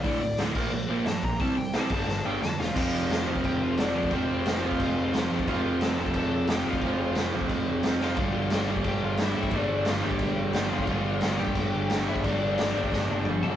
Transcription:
<<
  \new Staff \with { instrumentName = "Lead electric guitar" } { \time 4/4 \key f \major \tempo 4 = 177 << { d''8 d''8 r2 a''8 bes''8 | a''8 g''8 a''8 a''8 a''8 g''8 a''8 f''8 | r1 | r1 |
r1 | r1 | r1 | r1 |
r1 | r1 | } \\ { a'8 r2. r8 | r2. r8 <f' f''>8~ | <f' f''>4. r8 <g' g''>8 <f' f''>8 <d' d''>4 | <c' c''>4. <f' f''>2 r8 |
<f' f''>4 <a' a''>8 <a' a''>8 <a' a''>4 <g' g''>8 <f' f''>8~ | <f' f''>4 r2 r8 <f' f''>8~ | <f' f''>4. r8 <g' g''>8 <f' f''>8 <e' e''>4 | <d' d''>4 <f' f''>8 <g' g''>2 <f' f''>8~ |
<f' f''>4. <g' g''>2 <e' e''>8 | <d' d''>2. r8 <a' a''>8 | } >> }
  \new Staff \with { instrumentName = "Distorted electric guitar" } { \clef bass \time 4/4 \key f \major <d, a, d>8 <d, a,>8 <d, a, d>8 <bes, f bes>8 <bes, f>8 <bes, f bes>8 <bes, f>8 <bes, f>8 | <c g c'>8 <c g>8 <c g c'>8 <g, d g>8 <g, d>8 <g, d g>8 <g, d>8 <g, d>8 | <f, c f>2.~ <f, c f>8 <f, c f>8 | <f, c f>2.~ <f, c f>8 <f, c f>8 |
<f, c f>2.~ <f, c f>8 <f, c f>8 | <f, c f>2.~ <f, c f>8 <f, c f>8 | <g, d g>2.~ <g, d g>8 <g, d g>8 | <g, d g>2.~ <g, d g>8 <g, d g>8 |
<g, d g>2.~ <g, d g>8 <g, d g>8 | <g, d g>2.~ <g, d g>8 <g, d g>8 | }
  \new Staff \with { instrumentName = "Overdriven electric guitar" } { \clef bass \time 4/4 \key f \major <d, a, d>8 <d, a,>8 <d, a, d>8 <bes, f bes>8 <bes, f>8 <bes, f bes>8 <bes, f>8 <bes, f>8 | <c g c'>8 <c g>8 <c g c'>8 <g, d g>8 <g, d>8 <g, d g>8 <g, d>8 <g, d>8 | <f, c f>4. <f, c f>4. <f, c f>4 | <f, c f>4. <f, c f>4. <f, c f>4 |
<f, c f>4. <f, c f>4. <f, c f>4 | <f, c f>4. <f, c f>4. <f, c f>4 | <g, d g>4. <g, d g>4. <g, d g>4 | <g, d g>4. <g, d g>4. <g, d g>4 |
<g, d g>4. <g, d g>4. <g, d g>4 | <g, d g>4. <g, d g>4. <g, d g>4 | }
  \new Staff \with { instrumentName = "Picked electric bass" } { \clef bass \time 4/4 \key f \major d,,8 d,,8 d,,8 bes,,8 bes,,8 bes,,8 g,8 bes,,8 | c,8 c,8 c,8 g,,8 g,,8 g,,8 f,8 e,,8 | f,,8 f,,8 f,,8 f,,8 f,,8 f,,8 f,,8 f,8 | f,,8 f,,8 f,,8 f,,8 f,,8 f,,8 f,,8 f,8 |
f,,8 f,,8 f,,8 f,,8 f,,8 f,,8 f,,8 f,8 | f,,8 f,,8 f,,8 f,,8 f,,8 f,,8 f,,8 f,,8 | g,,8 g,,8 g,,8 g,,8 g,,8 g,,8 g,,8 g,8 | g,,8 g,,8 g,,8 g,,8 g,,8 g,,8 g,,8 g,8 |
g,,8 g,,8 g,,8 g,,8 g,,8 g,,8 g,,8 g,8 | g,,8 g,,8 g,,8 g,,8 g,,8 g,,8 g,,8 g,8 | }
  \new DrumStaff \with { instrumentName = "Drums" } \drummode { \time 4/4 <hho bd>4 <hho sn>8 <cymc bd>8 r4 <hho sn>8 bd8 | <hho bd>4 <hho sn>8 <cymc bd>8 sn4 sn8 sn8 | <cymc bd>4 <cymc sn>8. bd16 <cymc bd>4 <cymc sn>8. bd16 | <cymc bd>4 <cymc sn>8. bd16 <cymc bd>4 <cymc sn>8. bd16 |
<cymc bd>4 <cymc sn>8. bd16 <cymc bd>4 <cymc sn>8. bd16 | <cymc bd>4 <cymc sn>8. bd16 <cymc bd>4 <cymc sn>8 sn8 | <cymc bd>4 <cymc sn>8. bd16 <cymc bd>4 <cymc sn>8. bd16 | <cymc bd>4 <cymc sn>8. bd16 <cymc bd>4 <cymc sn>8. bd16 |
<cymc bd>4 <cymc sn>8. bd16 <cymc bd>4 <cymc sn>8. bd16 | <cymc bd>4 <cymc sn>8. bd16 <bd sn>8 tommh8 toml8 tomfh8 | }
>>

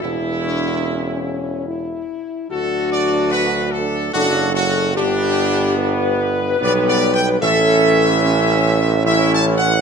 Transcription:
<<
  \new Staff \with { instrumentName = "Trumpet section" } { \time 3/4 \key a \major \tempo 4 = 73 e'2~ e'8 r8 | a'8 d''8 b'8 a'8 fis'8 fis'8 | d'2 \tuplet 3/2 { d''8 d''8 g''8 } | e''2 \tuplet 3/2 { e''8 a''8 fis''8 } | }
  \new Staff \with { instrumentName = "French horn section" } { \time 3/4 \key a \major e'8 d'8 cis'4 e'4 | fis'2 a'4 | g'4 b'2 | a'4 cis'4 e'4 | }
  \new Staff \with { instrumentName = "Trombone section" } { \time 3/4 \key a \major << { e,2~ e,8 r8 | d'2 d'8 cis'8 | b2 b4 | cis'2 cis'4 | } \\ { r2. | fis2 fis4 | g2 g4 | e2 e4 | } >> }
  \new Staff \with { instrumentName = "Tuba" } { \clef bass \time 3/4 \key a \major e,,2~ e,,8 r8 | d,2 fis,,4 | g,,2 b,,4 | a,,2. | }
>>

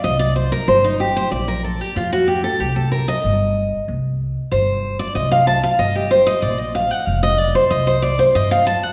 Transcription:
<<
  \new Staff \with { instrumentName = "Steel-string acoustic guitar" } { \time 4/4 \key c \dorian \tempo 4 = 188 ees''8 d''8 c''8 bes'8 c''8 ees'8 g'8 c''8 | d''8 bes'8 a'8 g'8 f'8 fis'8 g'8 a'8 | g'8 a'8 bes'8 ees''2~ ees''8 | r2 c''4. d''8 |
ees''8 f''8 a''8 f''8 ees''8 g'8 c''8 ees''8 | d''8 ees''8 f''8 fis''8 f''8 ees''8 d''8 c''8 | ees''8 c''8 d''8 c''8 ees''8 f''8 a''8 fis''8 | }
  \new Staff \with { instrumentName = "Upright bass" } { \clef bass \time 4/4 \key c \dorian c,2 g,,2 | bes,,2 f,2 | c,2 g,,2 | c,2 g,,2 |
c,2 g,,2 | bes,,2 f,,2 | c,2 g,2 | }
>>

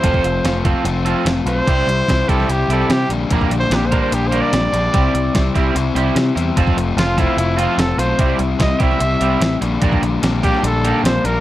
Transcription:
<<
  \new Staff \with { instrumentName = "Trumpet" } { \time 4/4 \key c \mixolydian \tempo 4 = 147 c''4. r2 c''8~ | c''4. a'8 g'8 a'8 g'8 r8 | \tuplet 3/2 { r4 c''8 g'8 c''8 c''8 g'8 c''8 d''8~ } d''4~ | d''4. r2 r8 |
r4 f'8 e'4 f'8 a'8 c''8~ | c''8 r8 ees''8 e''2 r8 | r4. g'8 a'4 c''8 bes'8 | }
  \new Staff \with { instrumentName = "Overdriven electric guitar" } { \time 4/4 \key c \mixolydian <f c' f' a'>8 r4 <f c' f' a'>8 r8 <f c' f' a'>8 r4 | <g c' e' g'>8 r4 <g c' e' g'>8 r8 <g c' e' g'>8 r4 | <g bes d' bes'>8 r4 <g bes d' bes'>8 r8 <g bes d' bes'>8 r4 | <g c' e' g'>8 r4 <g c' e' g'>8 r8 <g c' e' g'>8 r4 |
<f c' f' a'>8 r4 <f c' f' a'>8 r8 <f c' f' a'>8 r4 | <g c' e' g'>8 r4 <g c' e' g'>8 r8 <g c' e' g'>8 r4 | <bes d' g'>8 r4 <bes d' g'>8 r8 <bes d' g'>8 r4 | }
  \new Staff \with { instrumentName = "Overdriven electric guitar" } { \time 4/4 \key c \mixolydian <f a c' f'>4 <f a c' f'>8 <a c' f'>8 <f a c' f'>8 <a c' f'>4 <a c' f'>8 | <c g c' e'>4 <c g c' e'>8 <g c' e'>8 <c g c' e'>8 <g c' e'>4 <bes, d g bes d'>8 | <bes, d g bes d'>4 <d g bes d'>8 <g bes d'>8 <bes, d g bes d'>8 <g bes d'>4 <g bes d'>8 | <c g c' e'>4 <c g c' e'>8 <g c' e'>8 <c g c' e'>8 <g c' e'>4 <g c' e'>8 |
<f a c' f'>4 <f a c' f'>8 <a c' f'>8 <f a c' f'>8 <a c' f'>4 <a c' f'>8 | <c g c' e'>4 <c g c' e'>8 <g c' e'>8 <c g c' e'>8 <g c' e'>4 <bes, d g bes d'>8 | <bes, d g bes d'>4 <d g bes d'>8 <g bes d'>8 <bes, d g bes d'>8 <g bes d'>4 <g bes d'>8 | }
  \new Staff \with { instrumentName = "Picked electric bass" } { \clef bass \time 4/4 \key c \mixolydian f,,8 f,,8 f,,4 f,,4 f,,8 b,,8 | c,8 c,8 c,8 c,8 c,8 c,8 c8 bes,,8 | bes,,8 bes,,8 bes,,4 bes,,4 bes,,8 bes,,8 | c,8 c,8 c,8 c,8 c,8 c,8 c8 e,8 |
f,,8 f,,8 f,,4 f,,4 f,,8 b,,8 | c,8 c,8 c,8 c,8 c,8 c,8 a,,8 bes,,8 | bes,,8 bes,,8 bes,,4 bes,,4 bes,,8 bes,,8 | }
  \new DrumStaff \with { instrumentName = "Drums" } \drummode { \time 4/4 <hh bd>16 bd16 hh8 <hh sn>8 <hh bd>8 hh8 hh8 <hh sn>8 hh8 | <hh bd>8 hh8 <hh bd sn>8 <hh bd>16 sn16 hh8 hh8 <hh sn>8 hh8 | <hh bd>16 bd16 hh8 <hh sn>8 <hh bd>8 hh8 hh8 <hh sn>8 hh8 | <hh bd>8 hh8 <hh bd sn>8 <hh bd>8 hh8 hh8 <hh sn>8 hh8 |
<hh bd>16 bd16 hh8 <hh sn>8 <hh bd>8 hh8 hh8 <hh sn>8 hh8 | <hh bd>8 hh8 <hh bd sn>8 <hh bd>16 sn16 hh8 hh8 <hh sn>8 hh8 | <hh bd>16 bd16 hh8 <hh sn>8 <hh bd>16 sn16 hh8 hh8 <hh sn>8 hh8 | }
>>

